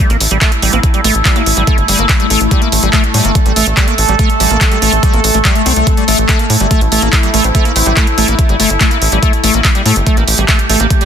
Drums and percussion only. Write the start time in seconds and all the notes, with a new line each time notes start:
0.10 closed hi-hat
0.20 open hi-hat
0.31 closed hi-hat
0.41 kick, clap, closed hi-hat
0.52 closed hi-hat
0.62 open hi-hat
0.73 closed hi-hat
0.83 kick, closed hi-hat
0.94 closed hi-hat
1.04 open hi-hat
1.15 closed hi-hat
1.25 kick, clap, closed hi-hat
1.36 closed hi-hat
1.46 open hi-hat
1.57 closed hi-hat
1.67 kick, closed hi-hat
1.78 closed hi-hat
1.88 open hi-hat
1.99 closed hi-hat
2.09 kick, clap, closed hi-hat
2.20 closed hi-hat
2.30 open hi-hat
2.41 closed hi-hat
2.51 kick, closed hi-hat
2.62 closed hi-hat
2.72 open hi-hat
2.83 closed hi-hat
2.93 kick, clap, closed hi-hat
3.04 closed hi-hat
3.14 open hi-hat
3.25 closed hi-hat
3.35 kick, closed hi-hat
3.46 closed hi-hat
3.56 open hi-hat
3.67 closed hi-hat
3.77 kick, clap, closed hi-hat
3.88 closed hi-hat
3.98 open hi-hat
4.09 closed hi-hat
4.19 kick, closed hi-hat
4.30 closed hi-hat
4.40 open hi-hat
4.51 closed hi-hat
4.61 kick, clap, closed hi-hat
4.72 closed hi-hat
4.82 open hi-hat
4.93 closed hi-hat
5.03 kick, closed hi-hat
5.14 closed hi-hat
5.24 open hi-hat
5.34 closed hi-hat
5.45 kick, clap, closed hi-hat
5.55 closed hi-hat
5.66 open hi-hat
5.76 closed hi-hat
5.87 kick, closed hi-hat
5.97 closed hi-hat
6.08 open hi-hat
6.18 closed hi-hat
6.29 kick, clap, closed hi-hat
6.39 closed hi-hat
6.50 open hi-hat
6.60 closed hi-hat
6.71 kick, closed hi-hat
6.81 closed hi-hat
6.92 open hi-hat
7.02 closed hi-hat
7.13 kick, clap, closed hi-hat
7.23 closed hi-hat
7.34 open hi-hat
7.44 closed hi-hat
7.55 kick, closed hi-hat
7.65 closed hi-hat
7.76 open hi-hat
7.86 closed hi-hat
7.97 kick, clap, closed hi-hat
8.07 closed hi-hat
8.18 open hi-hat
8.28 closed hi-hat
8.39 kick, closed hi-hat
8.49 closed hi-hat
8.60 open hi-hat
8.70 closed hi-hat
8.81 kick, clap, closed hi-hat
8.91 closed hi-hat
9.02 open hi-hat
9.12 closed hi-hat
9.23 kick, closed hi-hat
9.33 closed hi-hat
9.44 open hi-hat
9.54 closed hi-hat
9.65 kick, clap, closed hi-hat
9.75 closed hi-hat
9.86 open hi-hat
9.96 closed hi-hat
10.07 kick, closed hi-hat
10.17 closed hi-hat
10.28 open hi-hat
10.38 closed hi-hat
10.48 kick, clap, closed hi-hat
10.59 closed hi-hat
10.69 open hi-hat
10.80 closed hi-hat
10.90 kick, closed hi-hat
11.01 closed hi-hat